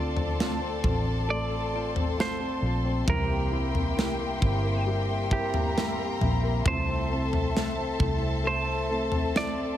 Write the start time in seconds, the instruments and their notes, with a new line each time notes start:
Already playing: fingered electric bass D2, grand piano D3 C4 F4, steel-string acoustic guitar C4 F4 A4, violin section A4 A5, string section A4 D5 C6, clean electric guitar D5
0.16 grand piano C4, floor tom
0.39 steel-string acoustic guitar A3 C4 F4 A4, grand piano F4, snare
0.61 grand piano C4
0.83 fingered electric bass A1, steel-string acoustic guitar C4 F4 A4, grand piano F4, kick, floor tom
1.07 grand piano C4
1.29 grand piano A3, clean electric guitar D5
1.51 grand piano C4
1.73 steel-string acoustic guitar C4 F4 A4, grand piano F4
1.95 grand piano C4, floor tom
2.17 steel-string acoustic guitar A3 C4 F4 A4, grand piano F4, clean electric guitar C5, snare
2.40 grand piano C4
2.62 fingered electric bass A#1, grand piano F4
2.85 grand piano C4
3.06 fingered electric bass C2, grand piano C3, steel-string acoustic guitar C3 E3 G3 C4 E4 A#4, violin section G4 G5, string section A#4 E5 G5, clean electric guitar A#4, kick, floor tom
3.29 grand piano A#3
3.51 steel-string acoustic guitar G3 C4 E4 A#4, grand piano E4
3.74 grand piano A#3, floor tom
3.96 steel-string acoustic guitar G3 C4 E4 A#4, grand piano E4, snare
4.18 grand piano A#3
4.40 fingered electric bass G1, steel-string acoustic guitar G3 C4 E4 A#4, grand piano E4, kick
4.63 grand piano A#3
4.86 grand piano G3
5.09 grand piano A#3
5.31 steel-string acoustic guitar G3 C4 E4 A#4, grand piano E4, clean electric guitar G4, violin section A#4 A#5, kick
5.54 grand piano A#3, floor tom
5.76 steel-string acoustic guitar G3 C4 E4 A#4, grand piano E4, snare
5.99 grand piano A#3
6.21 fingered electric bass A#1, grand piano E4, floor tom
6.44 grand piano A#3
6.65 fingered electric bass C2, steel-string acoustic guitar C3 F3 A3 C4 E4 A4, grand piano C3, string section A4 A5, violin section A4 A5, clean electric guitar C5, kick, floor tom
6.88 grand piano C4
7.11 steel-string acoustic guitar A3 C4 E4 A4, grand piano A4
7.33 grand piano C4, floor tom
7.55 steel-string acoustic guitar A3 C4 E4 A4, grand piano A4, snare
7.78 grand piano C4
7.99 fingered electric bass C2, steel-string acoustic guitar A3 C4 E4 A4, grand piano A4, kick, floor tom
8.22 grand piano C4
8.44 grand piano A3, clean electric guitar C5
8.67 grand piano C4
8.89 steel-string acoustic guitar A3 C4 E4 A4, grand piano A4
9.12 grand piano C4, floor tom
9.34 steel-string acoustic guitar E4 A4, grand piano A4, clean electric guitar D5, snare
9.56 grand piano C4